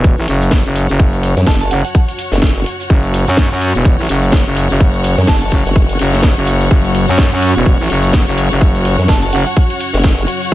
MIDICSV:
0, 0, Header, 1, 8, 480
1, 0, Start_track
1, 0, Tempo, 476190
1, 1004, Time_signature, 4, 2, 24, 8
1, 10626, End_track
2, 0, Start_track
2, 0, Title_t, "Synth bell"
2, 0, Program_c, 0, 98
2, 1484, Note_on_c, 0, 81, 90
2, 1572, Note_off_c, 0, 81, 0
2, 1622, Note_on_c, 0, 81, 77
2, 1687, Note_off_c, 0, 81, 0
2, 1724, Note_on_c, 0, 78, 91
2, 1812, Note_off_c, 0, 78, 0
2, 1861, Note_on_c, 0, 78, 75
2, 1927, Note_off_c, 0, 78, 0
2, 5324, Note_on_c, 0, 81, 92
2, 5412, Note_off_c, 0, 81, 0
2, 5461, Note_on_c, 0, 81, 79
2, 5526, Note_off_c, 0, 81, 0
2, 9162, Note_on_c, 0, 81, 90
2, 9251, Note_off_c, 0, 81, 0
2, 9300, Note_on_c, 0, 81, 80
2, 9366, Note_off_c, 0, 81, 0
2, 9403, Note_on_c, 0, 78, 94
2, 9491, Note_off_c, 0, 78, 0
2, 9540, Note_on_c, 0, 78, 78
2, 9606, Note_off_c, 0, 78, 0
2, 10626, End_track
3, 0, Start_track
3, 0, Title_t, "Ambient pad"
3, 0, Program_c, 1, 92
3, 0, Note_on_c, 1, 54, 83
3, 0, Note_on_c, 1, 61, 79
3, 0, Note_on_c, 1, 73, 76
3, 0, Note_on_c, 1, 78, 86
3, 6750, Note_off_c, 1, 78, 0
3, 6762, Note_on_c, 1, 76, 89
3, 10626, Note_off_c, 1, 54, 0
3, 10626, Note_off_c, 1, 61, 0
3, 10626, Note_off_c, 1, 73, 0
3, 10626, Note_off_c, 1, 76, 0
3, 10626, End_track
4, 0, Start_track
4, 0, Title_t, "String section"
4, 0, Program_c, 2, 48
4, 0, Note_on_c, 2, 66, 99
4, 0, Note_on_c, 2, 73, 102
4, 270, Note_on_c, 2, 78, 94
4, 10626, Note_off_c, 2, 66, 0
4, 10626, Note_off_c, 2, 73, 0
4, 10626, Note_off_c, 2, 78, 0
4, 10626, End_track
5, 0, Start_track
5, 0, Title_t, "FM bass"
5, 0, Program_c, 3, 39
5, 0, Note_on_c, 3, 28, 98
5, 158, Note_off_c, 3, 28, 0
5, 179, Note_on_c, 3, 33, 100
5, 266, Note_off_c, 3, 33, 0
5, 281, Note_on_c, 3, 30, 100
5, 638, Note_off_c, 3, 30, 0
5, 660, Note_on_c, 3, 30, 102
5, 878, Note_off_c, 3, 30, 0
5, 900, Note_on_c, 3, 30, 101
5, 1358, Note_off_c, 3, 30, 0
5, 1722, Note_on_c, 3, 30, 95
5, 1838, Note_off_c, 3, 30, 0
5, 2923, Note_on_c, 3, 30, 97
5, 3279, Note_off_c, 3, 30, 0
5, 3300, Note_on_c, 3, 42, 102
5, 3519, Note_off_c, 3, 42, 0
5, 3540, Note_on_c, 3, 42, 95
5, 3759, Note_off_c, 3, 42, 0
5, 3779, Note_on_c, 3, 28, 102
5, 3998, Note_off_c, 3, 28, 0
5, 4019, Note_on_c, 3, 33, 100
5, 4106, Note_off_c, 3, 33, 0
5, 4122, Note_on_c, 3, 30, 103
5, 4478, Note_off_c, 3, 30, 0
5, 4499, Note_on_c, 3, 30, 97
5, 4718, Note_off_c, 3, 30, 0
5, 4739, Note_on_c, 3, 30, 101
5, 5198, Note_off_c, 3, 30, 0
5, 5563, Note_on_c, 3, 30, 96
5, 5679, Note_off_c, 3, 30, 0
5, 6043, Note_on_c, 3, 30, 100
5, 6399, Note_off_c, 3, 30, 0
5, 6420, Note_on_c, 3, 30, 101
5, 6747, Note_off_c, 3, 30, 0
5, 6763, Note_on_c, 3, 30, 92
5, 7119, Note_off_c, 3, 30, 0
5, 7141, Note_on_c, 3, 42, 100
5, 7359, Note_off_c, 3, 42, 0
5, 7380, Note_on_c, 3, 42, 96
5, 7598, Note_off_c, 3, 42, 0
5, 7620, Note_on_c, 3, 28, 102
5, 7838, Note_off_c, 3, 28, 0
5, 7860, Note_on_c, 3, 33, 97
5, 7947, Note_off_c, 3, 33, 0
5, 7962, Note_on_c, 3, 30, 100
5, 8318, Note_off_c, 3, 30, 0
5, 8339, Note_on_c, 3, 30, 103
5, 8558, Note_off_c, 3, 30, 0
5, 8579, Note_on_c, 3, 30, 99
5, 9038, Note_off_c, 3, 30, 0
5, 9402, Note_on_c, 3, 30, 100
5, 9518, Note_off_c, 3, 30, 0
5, 10626, End_track
6, 0, Start_track
6, 0, Title_t, "Wobble bass"
6, 0, Program_c, 4, 39
6, 1379, Note_on_c, 4, 42, 92
6, 1466, Note_off_c, 4, 42, 0
6, 1483, Note_on_c, 4, 30, 101
6, 1707, Note_off_c, 4, 30, 0
6, 2340, Note_on_c, 4, 30, 103
6, 2558, Note_off_c, 4, 30, 0
6, 2580, Note_on_c, 4, 30, 102
6, 2667, Note_off_c, 4, 30, 0
6, 5220, Note_on_c, 4, 42, 99
6, 5307, Note_off_c, 4, 42, 0
6, 5323, Note_on_c, 4, 30, 98
6, 5547, Note_off_c, 4, 30, 0
6, 5699, Note_on_c, 4, 30, 100
6, 6026, Note_off_c, 4, 30, 0
6, 9059, Note_on_c, 4, 42, 97
6, 9146, Note_off_c, 4, 42, 0
6, 9163, Note_on_c, 4, 30, 106
6, 9387, Note_off_c, 4, 30, 0
6, 10020, Note_on_c, 4, 30, 100
6, 10238, Note_off_c, 4, 30, 0
6, 10260, Note_on_c, 4, 30, 97
6, 10346, Note_off_c, 4, 30, 0
6, 10626, End_track
7, 0, Start_track
7, 0, Title_t, "Impact"
7, 0, Program_c, 5, 103
7, 0, Note_on_c, 5, 60, 74
7, 1003, Note_off_c, 5, 60, 0
7, 10626, End_track
8, 0, Start_track
8, 0, Title_t, "Drums"
8, 42, Note_on_c, 9, 42, 89
8, 43, Note_on_c, 9, 36, 127
8, 45, Note_on_c, 9, 69, 59
8, 142, Note_off_c, 9, 42, 0
8, 144, Note_off_c, 9, 36, 0
8, 146, Note_off_c, 9, 69, 0
8, 183, Note_on_c, 9, 69, 35
8, 281, Note_on_c, 9, 46, 109
8, 284, Note_off_c, 9, 69, 0
8, 382, Note_off_c, 9, 46, 0
8, 420, Note_on_c, 9, 42, 41
8, 424, Note_on_c, 9, 69, 70
8, 516, Note_on_c, 9, 38, 123
8, 521, Note_off_c, 9, 42, 0
8, 522, Note_on_c, 9, 42, 84
8, 523, Note_on_c, 9, 36, 121
8, 524, Note_off_c, 9, 69, 0
8, 526, Note_on_c, 9, 69, 56
8, 617, Note_off_c, 9, 38, 0
8, 623, Note_off_c, 9, 42, 0
8, 624, Note_off_c, 9, 36, 0
8, 626, Note_off_c, 9, 69, 0
8, 663, Note_on_c, 9, 69, 34
8, 761, Note_on_c, 9, 46, 106
8, 764, Note_off_c, 9, 69, 0
8, 862, Note_off_c, 9, 46, 0
8, 900, Note_on_c, 9, 42, 40
8, 904, Note_on_c, 9, 69, 65
8, 1001, Note_off_c, 9, 42, 0
8, 1003, Note_on_c, 9, 36, 120
8, 1003, Note_on_c, 9, 42, 82
8, 1004, Note_off_c, 9, 69, 0
8, 1006, Note_on_c, 9, 69, 55
8, 1103, Note_off_c, 9, 42, 0
8, 1104, Note_off_c, 9, 36, 0
8, 1107, Note_off_c, 9, 69, 0
8, 1141, Note_on_c, 9, 42, 39
8, 1144, Note_on_c, 9, 69, 33
8, 1241, Note_off_c, 9, 42, 0
8, 1243, Note_on_c, 9, 46, 113
8, 1245, Note_off_c, 9, 69, 0
8, 1343, Note_off_c, 9, 46, 0
8, 1381, Note_on_c, 9, 42, 39
8, 1385, Note_on_c, 9, 69, 68
8, 1478, Note_on_c, 9, 38, 127
8, 1482, Note_off_c, 9, 42, 0
8, 1483, Note_on_c, 9, 36, 127
8, 1483, Note_on_c, 9, 42, 85
8, 1486, Note_off_c, 9, 69, 0
8, 1487, Note_on_c, 9, 69, 57
8, 1578, Note_off_c, 9, 38, 0
8, 1584, Note_off_c, 9, 36, 0
8, 1584, Note_off_c, 9, 42, 0
8, 1588, Note_off_c, 9, 69, 0
8, 1621, Note_on_c, 9, 42, 54
8, 1625, Note_on_c, 9, 69, 33
8, 1722, Note_off_c, 9, 42, 0
8, 1723, Note_on_c, 9, 46, 108
8, 1726, Note_off_c, 9, 69, 0
8, 1824, Note_off_c, 9, 46, 0
8, 1861, Note_on_c, 9, 42, 57
8, 1865, Note_on_c, 9, 69, 65
8, 1962, Note_off_c, 9, 42, 0
8, 1963, Note_on_c, 9, 36, 126
8, 1964, Note_on_c, 9, 42, 83
8, 1966, Note_off_c, 9, 69, 0
8, 1968, Note_on_c, 9, 69, 57
8, 2064, Note_off_c, 9, 36, 0
8, 2065, Note_off_c, 9, 42, 0
8, 2069, Note_off_c, 9, 69, 0
8, 2102, Note_on_c, 9, 46, 67
8, 2106, Note_on_c, 9, 69, 34
8, 2203, Note_off_c, 9, 46, 0
8, 2203, Note_on_c, 9, 46, 116
8, 2207, Note_off_c, 9, 69, 0
8, 2304, Note_off_c, 9, 46, 0
8, 2336, Note_on_c, 9, 38, 41
8, 2341, Note_on_c, 9, 42, 40
8, 2345, Note_on_c, 9, 69, 67
8, 2437, Note_off_c, 9, 38, 0
8, 2438, Note_on_c, 9, 38, 127
8, 2442, Note_off_c, 9, 42, 0
8, 2443, Note_on_c, 9, 36, 127
8, 2444, Note_on_c, 9, 42, 82
8, 2446, Note_off_c, 9, 69, 0
8, 2448, Note_on_c, 9, 69, 54
8, 2539, Note_off_c, 9, 38, 0
8, 2544, Note_off_c, 9, 36, 0
8, 2545, Note_off_c, 9, 42, 0
8, 2549, Note_off_c, 9, 69, 0
8, 2586, Note_on_c, 9, 69, 33
8, 2684, Note_on_c, 9, 46, 115
8, 2687, Note_off_c, 9, 69, 0
8, 2784, Note_off_c, 9, 46, 0
8, 2822, Note_on_c, 9, 42, 37
8, 2826, Note_on_c, 9, 69, 68
8, 2923, Note_off_c, 9, 42, 0
8, 2923, Note_on_c, 9, 36, 124
8, 2924, Note_on_c, 9, 42, 74
8, 2927, Note_off_c, 9, 69, 0
8, 2928, Note_on_c, 9, 69, 55
8, 3024, Note_off_c, 9, 36, 0
8, 3025, Note_off_c, 9, 42, 0
8, 3029, Note_off_c, 9, 69, 0
8, 3062, Note_on_c, 9, 42, 36
8, 3066, Note_on_c, 9, 69, 34
8, 3163, Note_off_c, 9, 42, 0
8, 3164, Note_on_c, 9, 46, 116
8, 3166, Note_off_c, 9, 69, 0
8, 3265, Note_off_c, 9, 46, 0
8, 3302, Note_on_c, 9, 42, 36
8, 3306, Note_on_c, 9, 69, 67
8, 3399, Note_on_c, 9, 38, 124
8, 3403, Note_off_c, 9, 42, 0
8, 3403, Note_on_c, 9, 36, 127
8, 3404, Note_on_c, 9, 42, 83
8, 3407, Note_off_c, 9, 69, 0
8, 3408, Note_on_c, 9, 69, 57
8, 3500, Note_off_c, 9, 38, 0
8, 3504, Note_off_c, 9, 36, 0
8, 3505, Note_off_c, 9, 42, 0
8, 3509, Note_off_c, 9, 69, 0
8, 3542, Note_on_c, 9, 42, 51
8, 3546, Note_on_c, 9, 69, 31
8, 3642, Note_off_c, 9, 42, 0
8, 3644, Note_on_c, 9, 46, 109
8, 3646, Note_off_c, 9, 69, 0
8, 3745, Note_off_c, 9, 46, 0
8, 3782, Note_on_c, 9, 42, 52
8, 3786, Note_on_c, 9, 69, 68
8, 3883, Note_off_c, 9, 42, 0
8, 3883, Note_on_c, 9, 36, 127
8, 3884, Note_on_c, 9, 42, 84
8, 3886, Note_off_c, 9, 69, 0
8, 3888, Note_on_c, 9, 69, 58
8, 3984, Note_off_c, 9, 36, 0
8, 3985, Note_off_c, 9, 42, 0
8, 3989, Note_off_c, 9, 69, 0
8, 4025, Note_on_c, 9, 69, 32
8, 4124, Note_on_c, 9, 46, 123
8, 4126, Note_off_c, 9, 69, 0
8, 4225, Note_off_c, 9, 46, 0
8, 4261, Note_on_c, 9, 42, 37
8, 4265, Note_on_c, 9, 69, 67
8, 4357, Note_on_c, 9, 38, 123
8, 4362, Note_off_c, 9, 42, 0
8, 4363, Note_on_c, 9, 36, 123
8, 4363, Note_on_c, 9, 42, 82
8, 4366, Note_off_c, 9, 69, 0
8, 4367, Note_on_c, 9, 69, 54
8, 4458, Note_off_c, 9, 38, 0
8, 4464, Note_off_c, 9, 36, 0
8, 4464, Note_off_c, 9, 42, 0
8, 4468, Note_off_c, 9, 69, 0
8, 4504, Note_on_c, 9, 69, 32
8, 4603, Note_on_c, 9, 46, 118
8, 4605, Note_off_c, 9, 69, 0
8, 4703, Note_off_c, 9, 46, 0
8, 4740, Note_on_c, 9, 42, 36
8, 4744, Note_on_c, 9, 69, 65
8, 4841, Note_off_c, 9, 42, 0
8, 4842, Note_on_c, 9, 42, 74
8, 4843, Note_on_c, 9, 36, 127
8, 4845, Note_off_c, 9, 69, 0
8, 4846, Note_on_c, 9, 69, 57
8, 4943, Note_off_c, 9, 42, 0
8, 4944, Note_off_c, 9, 36, 0
8, 4947, Note_off_c, 9, 69, 0
8, 4979, Note_on_c, 9, 42, 39
8, 4983, Note_on_c, 9, 69, 35
8, 5080, Note_off_c, 9, 42, 0
8, 5082, Note_on_c, 9, 46, 115
8, 5084, Note_off_c, 9, 69, 0
8, 5182, Note_off_c, 9, 46, 0
8, 5220, Note_on_c, 9, 42, 35
8, 5223, Note_on_c, 9, 69, 64
8, 5316, Note_on_c, 9, 38, 126
8, 5320, Note_off_c, 9, 42, 0
8, 5322, Note_on_c, 9, 42, 77
8, 5323, Note_on_c, 9, 36, 125
8, 5324, Note_off_c, 9, 69, 0
8, 5326, Note_on_c, 9, 69, 55
8, 5417, Note_off_c, 9, 38, 0
8, 5423, Note_off_c, 9, 42, 0
8, 5424, Note_off_c, 9, 36, 0
8, 5427, Note_off_c, 9, 69, 0
8, 5460, Note_on_c, 9, 42, 48
8, 5463, Note_on_c, 9, 69, 33
8, 5560, Note_off_c, 9, 42, 0
8, 5562, Note_on_c, 9, 46, 107
8, 5563, Note_on_c, 9, 36, 64
8, 5564, Note_off_c, 9, 69, 0
8, 5662, Note_off_c, 9, 46, 0
8, 5664, Note_off_c, 9, 36, 0
8, 5699, Note_on_c, 9, 42, 52
8, 5703, Note_on_c, 9, 69, 66
8, 5800, Note_off_c, 9, 42, 0
8, 5802, Note_on_c, 9, 42, 77
8, 5803, Note_on_c, 9, 36, 127
8, 5804, Note_off_c, 9, 69, 0
8, 5806, Note_on_c, 9, 69, 57
8, 5903, Note_off_c, 9, 42, 0
8, 5904, Note_off_c, 9, 36, 0
8, 5907, Note_off_c, 9, 69, 0
8, 5940, Note_on_c, 9, 46, 72
8, 5943, Note_on_c, 9, 69, 35
8, 6040, Note_off_c, 9, 46, 0
8, 6041, Note_on_c, 9, 46, 124
8, 6044, Note_off_c, 9, 69, 0
8, 6142, Note_off_c, 9, 46, 0
8, 6174, Note_on_c, 9, 38, 37
8, 6179, Note_on_c, 9, 42, 38
8, 6183, Note_on_c, 9, 69, 70
8, 6274, Note_off_c, 9, 38, 0
8, 6277, Note_on_c, 9, 38, 115
8, 6280, Note_off_c, 9, 42, 0
8, 6283, Note_on_c, 9, 36, 122
8, 6283, Note_on_c, 9, 42, 80
8, 6284, Note_off_c, 9, 69, 0
8, 6287, Note_on_c, 9, 69, 56
8, 6378, Note_off_c, 9, 38, 0
8, 6384, Note_off_c, 9, 36, 0
8, 6384, Note_off_c, 9, 42, 0
8, 6387, Note_off_c, 9, 69, 0
8, 6421, Note_on_c, 9, 42, 36
8, 6425, Note_on_c, 9, 69, 33
8, 6522, Note_off_c, 9, 42, 0
8, 6523, Note_on_c, 9, 46, 114
8, 6525, Note_off_c, 9, 69, 0
8, 6624, Note_off_c, 9, 46, 0
8, 6660, Note_on_c, 9, 42, 36
8, 6664, Note_on_c, 9, 69, 70
8, 6761, Note_off_c, 9, 42, 0
8, 6763, Note_on_c, 9, 36, 122
8, 6763, Note_on_c, 9, 42, 74
8, 6765, Note_off_c, 9, 69, 0
8, 6767, Note_on_c, 9, 69, 60
8, 6864, Note_off_c, 9, 36, 0
8, 6864, Note_off_c, 9, 42, 0
8, 6868, Note_off_c, 9, 69, 0
8, 6900, Note_on_c, 9, 42, 37
8, 6904, Note_on_c, 9, 69, 36
8, 7001, Note_off_c, 9, 42, 0
8, 7003, Note_on_c, 9, 46, 112
8, 7005, Note_off_c, 9, 69, 0
8, 7103, Note_off_c, 9, 46, 0
8, 7141, Note_on_c, 9, 42, 36
8, 7145, Note_on_c, 9, 69, 66
8, 7238, Note_on_c, 9, 38, 121
8, 7241, Note_off_c, 9, 42, 0
8, 7243, Note_on_c, 9, 36, 126
8, 7243, Note_on_c, 9, 42, 77
8, 7245, Note_off_c, 9, 69, 0
8, 7247, Note_on_c, 9, 69, 60
8, 7338, Note_off_c, 9, 38, 0
8, 7344, Note_off_c, 9, 36, 0
8, 7344, Note_off_c, 9, 42, 0
8, 7348, Note_off_c, 9, 69, 0
8, 7380, Note_on_c, 9, 42, 51
8, 7384, Note_on_c, 9, 69, 34
8, 7481, Note_off_c, 9, 42, 0
8, 7483, Note_on_c, 9, 46, 107
8, 7485, Note_off_c, 9, 69, 0
8, 7583, Note_off_c, 9, 46, 0
8, 7620, Note_on_c, 9, 42, 52
8, 7624, Note_on_c, 9, 69, 71
8, 7721, Note_off_c, 9, 42, 0
8, 7723, Note_on_c, 9, 36, 120
8, 7723, Note_on_c, 9, 42, 79
8, 7725, Note_off_c, 9, 69, 0
8, 7727, Note_on_c, 9, 69, 63
8, 7824, Note_off_c, 9, 36, 0
8, 7824, Note_off_c, 9, 42, 0
8, 7828, Note_off_c, 9, 69, 0
8, 7864, Note_on_c, 9, 69, 37
8, 7963, Note_on_c, 9, 46, 120
8, 7965, Note_off_c, 9, 69, 0
8, 8064, Note_off_c, 9, 46, 0
8, 8101, Note_on_c, 9, 42, 37
8, 8105, Note_on_c, 9, 69, 73
8, 8197, Note_on_c, 9, 38, 120
8, 8201, Note_off_c, 9, 42, 0
8, 8203, Note_on_c, 9, 36, 124
8, 8203, Note_on_c, 9, 42, 75
8, 8205, Note_off_c, 9, 69, 0
8, 8207, Note_on_c, 9, 69, 57
8, 8298, Note_off_c, 9, 38, 0
8, 8304, Note_off_c, 9, 36, 0
8, 8304, Note_off_c, 9, 42, 0
8, 8308, Note_off_c, 9, 69, 0
8, 8345, Note_on_c, 9, 69, 34
8, 8443, Note_on_c, 9, 46, 108
8, 8445, Note_off_c, 9, 69, 0
8, 8544, Note_off_c, 9, 46, 0
8, 8580, Note_on_c, 9, 42, 36
8, 8584, Note_on_c, 9, 69, 70
8, 8681, Note_off_c, 9, 42, 0
8, 8682, Note_on_c, 9, 42, 77
8, 8683, Note_on_c, 9, 36, 113
8, 8684, Note_off_c, 9, 69, 0
8, 8686, Note_on_c, 9, 69, 62
8, 8783, Note_off_c, 9, 42, 0
8, 8784, Note_off_c, 9, 36, 0
8, 8787, Note_off_c, 9, 69, 0
8, 8819, Note_on_c, 9, 42, 38
8, 8823, Note_on_c, 9, 69, 37
8, 8920, Note_off_c, 9, 42, 0
8, 8922, Note_on_c, 9, 46, 113
8, 8924, Note_off_c, 9, 69, 0
8, 9023, Note_off_c, 9, 46, 0
8, 9060, Note_on_c, 9, 42, 39
8, 9063, Note_on_c, 9, 69, 73
8, 9156, Note_on_c, 9, 38, 114
8, 9160, Note_off_c, 9, 42, 0
8, 9162, Note_on_c, 9, 42, 83
8, 9163, Note_on_c, 9, 36, 119
8, 9164, Note_off_c, 9, 69, 0
8, 9166, Note_on_c, 9, 69, 63
8, 9257, Note_off_c, 9, 38, 0
8, 9263, Note_off_c, 9, 36, 0
8, 9263, Note_off_c, 9, 42, 0
8, 9267, Note_off_c, 9, 69, 0
8, 9299, Note_on_c, 9, 42, 51
8, 9303, Note_on_c, 9, 69, 37
8, 9400, Note_off_c, 9, 42, 0
8, 9402, Note_on_c, 9, 46, 102
8, 9404, Note_off_c, 9, 69, 0
8, 9503, Note_off_c, 9, 46, 0
8, 9540, Note_on_c, 9, 42, 53
8, 9544, Note_on_c, 9, 69, 69
8, 9641, Note_off_c, 9, 42, 0
8, 9642, Note_on_c, 9, 42, 86
8, 9643, Note_on_c, 9, 36, 116
8, 9644, Note_off_c, 9, 69, 0
8, 9646, Note_on_c, 9, 69, 62
8, 9743, Note_off_c, 9, 36, 0
8, 9743, Note_off_c, 9, 42, 0
8, 9747, Note_off_c, 9, 69, 0
8, 9780, Note_on_c, 9, 46, 65
8, 9784, Note_on_c, 9, 69, 36
8, 9881, Note_off_c, 9, 46, 0
8, 9883, Note_on_c, 9, 46, 110
8, 9884, Note_off_c, 9, 69, 0
8, 9983, Note_off_c, 9, 46, 0
8, 10014, Note_on_c, 9, 38, 37
8, 10020, Note_on_c, 9, 42, 39
8, 10024, Note_on_c, 9, 69, 78
8, 10115, Note_off_c, 9, 38, 0
8, 10117, Note_on_c, 9, 38, 110
8, 10121, Note_off_c, 9, 42, 0
8, 10123, Note_on_c, 9, 36, 116
8, 10123, Note_on_c, 9, 42, 82
8, 10125, Note_off_c, 9, 69, 0
8, 10127, Note_on_c, 9, 69, 60
8, 10218, Note_off_c, 9, 38, 0
8, 10224, Note_off_c, 9, 36, 0
8, 10224, Note_off_c, 9, 42, 0
8, 10227, Note_off_c, 9, 69, 0
8, 10264, Note_on_c, 9, 69, 36
8, 10362, Note_on_c, 9, 46, 101
8, 10365, Note_off_c, 9, 69, 0
8, 10463, Note_off_c, 9, 46, 0
8, 10500, Note_on_c, 9, 42, 37
8, 10504, Note_on_c, 9, 69, 68
8, 10601, Note_off_c, 9, 42, 0
8, 10605, Note_off_c, 9, 69, 0
8, 10626, End_track
0, 0, End_of_file